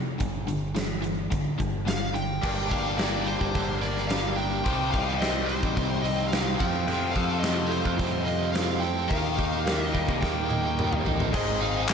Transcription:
Already playing: F2 C3
0.18 G1 G2 D3, kick, closed hi-hat
0.47 G2 D3, closed hi-hat
0.74 G2 E3, snare, closed hi-hat
1.01 G2 E3, closed hi-hat
1.30 G1 G2 D3, kick, closed hi-hat
1.58 G1 G2 D3, kick, closed hi-hat
1.85 G2 D3 F5, snare, closed hi-hat
2.14 G2 D3 G5, closed hi-hat
2.41 G1 G2 D3 G3 A#3 D4 G4 D5, kick, crash
2.68 G1 G3 A#3 D4 G4 F5, kick, open hi-hat
2.97 G3 A#3 D5, snare, open hi-hat
3.25 G3 A#3 D4 G4 C5, open hi-hat
3.41 G1, kick
3.53 G1 G2 D3 G3 A#3 D4 G4, kick, open hi-hat
3.80 G3 A#3 D4 G4 D5, open hi-hat
3.97 snare
4.08 G3 A#3 D4 G4 F5, snare, open hi-hat
4.36 G3 A#3 D4 G4 G5, open hi-hat
4.64 C2 C3 D#3 G3 C4 D#4 G4 D#5, kick, open hi-hat
4.91 C2 C4 D#4 G4 F5, kick, open hi-hat
5.18 G3 C4 D#4 D#5, open hi-hat
5.22 G4, snare
5.46 G3 D#4 G4 C5, open hi-hat
5.50 C4
5.63 A1, kick
5.76 C2 C3 G3 C4 D#4 G4, kick, open hi-hat
6.02 C4 D#5, open hi-hat
6.28 G3 F5
6.32 C4 D#4 G4, snare, open hi-hat
6.56 F2 C3 F3 A3 C4 G4 G5
6.60 F2 A3 C4 F4 G4 C5, kick, open hi-hat
6.87 F2 F3 A3 C4 F4 G4 A4, open hi-hat
7.11 G4 F5
7.15 F2 F4 A4, kick, open hi-hat
7.39 A3 D#5
7.43 F4 G4 A4, snare, open hi-hat
7.67 G4 C5
7.71 C4 F4, open hi-hat
7.85 F2, kick
7.97 F2 F3 G3 A3 C4 F4 G4 C5, kick, open hi-hat
8.24 F4 G4 D#5, open hi-hat
8.29 C4
8.52 A3 C4 F4 G4 C5 F5, snare, open hi-hat
8.80 C4 F4 G4 A4 G5, open hi-hat
9.08 D#2 D#3 G3 A#3 D#4 G4 A#4 D#5 F5, kick, open hi-hat
9.12 G4
9.36 D#2 A#3 D#4 G4, kick, open hi-hat
9.64 G3 A#3 D#4 G4 A#4, snare, open hi-hat
9.83 D#5
9.92 G3 A#3 D#4 G4, kick, open hi-hat
10.09 C2, kick
10.20 D#2 D#3 G3 A#3 D#4 G4 A#4 G5, kick, snare
10.47 A#3 D#4 G4, high tom
10.76 G3 A#3 D#4 G4 A#4, mid tom
10.93 mid tom
11.04 A1 A3 A#3 B3 D#4 G4, floor tom
11.10 C4 D4
11.15 E4 F4
11.20 G4 A4, floor tom
11.28 B4 C5
11.32 G#1 G#2 D#3 G#3 C4 D#4 G#4 C5 D5 D#5, kick, crash
11.62 G#3 C4 D#4 F5
11.88 G#2 D#3 G#3 C4 D#4 G#4 C5, snare, clap

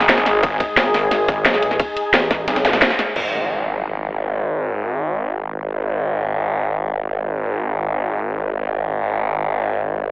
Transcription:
Already playing: G#1 G#3 D#4 G#4
0.01 snare
0.09 snare, closed hi-hat, ride
0.18 snare
0.26 snare, closed hi-hat, ride
0.43 G#1, kick, closed hi-hat, ride
0.60 kick, closed hi-hat, ride
0.77 G#1, snare, closed hi-hat, ride
0.94 G#1, snare, closed hi-hat, open hi-hat
1.11 snare, closed hi-hat, ride
1.28 kick, closed hi-hat, ride
1.45 B1, snare, closed hi-hat, ride
1.54 snare
1.62 closed hi-hat, ride
1.71 snare
1.80 kick, closed hi-hat, ride
1.97 closed hi-hat, ride
2.14 A1, snare, closed hi-hat, ride
2.31 kick, snare, closed hi-hat, ride
2.48 B1, snare, closed hi-hat, ride
2.56 snare, ride
2.65 snare, closed hi-hat, ride, zap
2.73 snare, ride
2.82 snare, closed hi-hat, ride
2.90 snare
2.99 snare, closed hi-hat
3.16 G#1 G#3 D#4 G#4, crash, impact
8.61 G#1 F#4

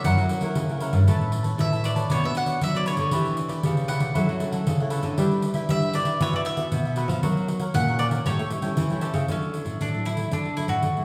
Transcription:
0.03 F#2 F#3 C#4 E4 A#4 C#5 F#5, pandeiro
0.17 F#3 C#5 F#5, pandeiro
0.22 A#4
0.29 C#4 E4 A#4, muted cavaquinho stroke, pandeiro
0.41 C#4 E4 A#4 C#5 F#5, pandeiro
0.55 C#3, pandeiro
0.69 C#4 E4 A#4 C#5 F#5, pandeiro
0.80 E4 A#4 C#5 F#5, pandeiro
0.93 G2 A#4 C#5 F#5, pandeiro
1.07 A2 A3 C#4 E4 A4 B4 C#5 A5, pandeiro
1.21 pandeiro
1.32 muted cavaquinho stroke, pandeiro
1.43 B4 C#5 A5, pandeiro
1.58 A2 E3 C#4 E4 B4 E5, pandeiro
1.72 B4 C#5 A5, pandeiro
1.83 A4 B4 C#5 D5 A5, pandeiro
1.95 B4 C#5 A5, pandeiro
2.10 B2 B3 D4 F#4 B4 C#5 D5, pandeiro
2.24 B3 B4 E5, pandeiro
2.34 D4 F#4 C#5 F#5, muted cavaquinho stroke, pandeiro
2.45 B4 C#5 D5, pandeiro
2.61 F#3 E5, pandeiro
2.73 D4 F#4 B4 C#5 D5, pandeiro
2.85 D4 B4 C#5 D5, pandeiro
2.97 D3 B4 C#5 D5, pandeiro
3.11 E3 D4 E4 G4 B4 D5, pandeiro
3.25 pandeiro
3.37 muted cavaquinho stroke, pandeiro
3.48 G4 B4 D5, pandeiro
3.63 B2 C#3 G4 B4, pandeiro
3.77 G4 B4 D5, pandeiro
3.88 E4 G4 B4 D5 F#5, pandeiro
4.00 G4 B4 D5, pandeiro
4.14 F#3 C#4 E4 A4 C#5 F#5, pandeiro
4.28 F#3 A4 C#5 F#5, pandeiro
4.39 C#4 E4 A4, muted cavaquinho stroke, pandeiro
4.52 A4 C#5 F#5, pandeiro
4.66 C#3, pandeiro
4.80 C#4 E4 A4 C#5 F#5, pandeiro
4.90 E4 A4 C#5 F#5, pandeiro
5.03 D3 A4 C#5 F#5, pandeiro
5.17 G3 D4 E4 G4 B4 E5, pandeiro
5.31 pandeiro
5.42 muted cavaquinho stroke, pandeiro
5.53 D4 E4 G4 B4 E5, pandeiro
5.68 D3 G3 E5, pandeiro
5.82 G4 B4 E5, pandeiro
5.93 D4 E4 G4 B4 D5 E5, pandeiro
6.05 G4 B4 E5, pandeiro
6.19 E3 B3 F#4 B4 C#5 E5 F#5, pandeiro
6.33 E3 B4 D5 E5 F#5, pandeiro
6.45 E5, muted cavaquinho stroke, pandeiro
6.56 B3 F#4 B4 E5 F#5, pandeiro
6.71 B2, pandeiro
6.85 B4 E5 F#5, pandeiro
6.96 B3 F#4 B4 E5 F#5, pandeiro
7.08 F3 B4 E5 F#5, pandeiro
7.22 F#3 C#4 F#4 A#4 C#5 F#5, pandeiro
7.37 pandeiro
7.48 muted cavaquinho stroke, pandeiro
7.59 A#4 C#5 F#5, pandeiro
7.74 A#2 C#3 C#4 F#4 A#4 F#5, pandeiro
7.88 A#4 C#5 F#5, pandeiro
7.99 F#4 A#4 C#5 D5 F#5, pandeiro
8.11 A#4 C#5 F#5, pandeiro
8.26 A2 G3 C#4 E4 G4 A4 C#5 G5, pandeiro
8.39 A3 A4 C#5 G5, pandeiro
8.50 G3 C#4 E4, muted cavaquinho stroke, pandeiro
8.62 G3 C#4 E4 A4 C#5 G5, pandeiro
8.77 E3, pandeiro
8.90 G3 C#4 E4 A4 C#5 G5, pandeiro
9.01 G4 A4 C#5 G5, pandeiro
9.13 C#3 A4 C#5 G5, pandeiro
9.28 D3 F#3 A3 C#4 E4, pandeiro
9.43 pandeiro
9.53 F#3 A3 E4, pandeiro
9.65 A2, pandeiro
9.80 A2 D4, pandeiro
9.93 F#3 A3 E4, pandeiro
10.05 E4, pandeiro
10.17 F#3 A3 E4, pandeiro
10.31 D3 F#3 A3 D4 E4, pandeiro
10.45 pandeiro
10.56 F#3 A3 E4, pandeiro
10.68 A2 F#4, pandeiro
10.82 A2, pandeiro
10.97 F#3 A3 E4, pandeiro

